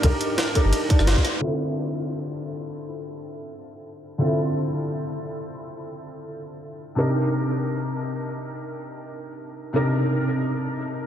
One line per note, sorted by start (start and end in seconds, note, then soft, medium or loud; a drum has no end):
0.00 0.12 C2 loud
0.00 0.02 D4 loud
0.00 0.53 D4 loud
0.00 0.03 D#4 medium
0.00 0.53 D#4 medium
0.00 0.04 G4 medium
0.00 0.54 G4 medium
0.00 0.05 A#4 loud
0.00 0.92 D5 medium
0.00 kick loud
0.00 closed hi-hat loud
0.00 ride medium
0.05 0.54 A#4 loud
0.21 closed hi-hat medium
0.21 ride medium
0.38 snare loud
0.38 closed hi-hat loud
0.38 ride medium
0.54 0.87 D4 medium
0.54 0.88 D#4 medium
0.54 0.88 G4 medium
0.54 0.89 A#4 loud
0.54 kick medium
0.54 closed hi-hat medium
0.54 ride medium
0.64 0.72 G1 loud
0.73 closed hi-hat loud
0.73 ride medium
0.88 1.39 D4 medium
0.88 1.40 D#4 medium
0.88 1.40 G4 medium
0.88 1.41 D5 medium
0.88 kick loud
0.88 closed hi-hat medium
0.88 ride medium
0.99 1.07 G1 loud
0.99 cross-stick medium
1.07 1.16 G1 loud
1.07 snare loud
1.07 closed hi-hat loud
1.07 ride medium
1.16 kick medium
1.16 snare soft
1.25 cross-stick soft
1.25 closed hi-hat medium
1.25 ride medium
1.40 4.16 D3 medium
1.40 4.17 C4 medium
1.40 4.17 E4 medium
1.40 4.18 F4 medium
1.40 4.18 A4 medium
4.18 6.94 D3 medium
4.18 6.95 C4 medium
4.18 6.95 E4 medium
4.18 6.95 F4 medium
4.18 6.96 A4 medium
6.95 9.71 C3 medium
6.95 9.72 D4 medium
6.95 9.72 D#4 medium
6.95 9.73 G4 medium
6.95 9.73 A#4 medium
9.73 11.07 C3 medium
9.73 11.07 D4 medium
9.73 11.07 D#4 medium
9.73 11.07 G4 medium
9.73 11.07 A#4 medium